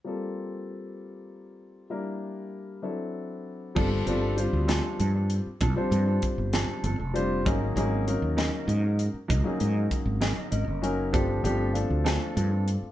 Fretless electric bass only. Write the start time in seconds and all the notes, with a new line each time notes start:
3.77 G1
4.07 G1
4.53 D2
5.00 G2
5.47 muted fretless electric bass stroke
5.62 C2
5.77 muted fretless electric bass stroke
5.91 G2
6.38 G1
6.69 muted fretless electric bass stroke
6.84 G1
6.99 F1
7.47 G#1
7.76 G#1
8.22 D#2
8.68 G#2
9.14 muted fretless electric bass stroke
9.30 C#2
9.45 muted fretless electric bass stroke
9.61 G#2
10.06 G#1
10.38 muted fretless electric bass stroke
10.52 G#1
10.68 F#1
11.14 G1
11.44 G1
11.90 D2
12.37 G2
12.82 muted fretless electric bass stroke